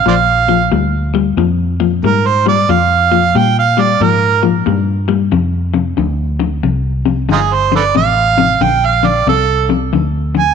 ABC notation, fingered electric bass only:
X:1
M:4/4
L:1/8
Q:"Swing" 1/4=91
K:Bbmix
V:1 name="Fingered electric bass" clef=bass
B,,,2 D,,2 F,,2 A,,2 | F,,2 B,,2 A,,2 G,,2 | F,,2 D,,2 C,,2 G,,,2 | =A,,,2 B,,,2 C,,2 D,,2 |]